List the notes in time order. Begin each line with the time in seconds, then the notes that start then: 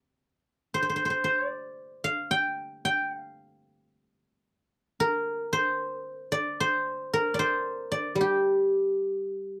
Already playing: G5
0.74 C5
0.82 C5
0.90 C5
0.96 C5
1.05 C5
1.10 C5
1.24 C5
1.47 D5
2.04 F5
2.31 G5
2.85 G5
3.17 F5
5.00 A#4
5.53 C5
6.32 D5
6.60 C5
7.13 A#4
7.34 D5
7.39 C5
7.92 D5
8.15 G3
8.21 G4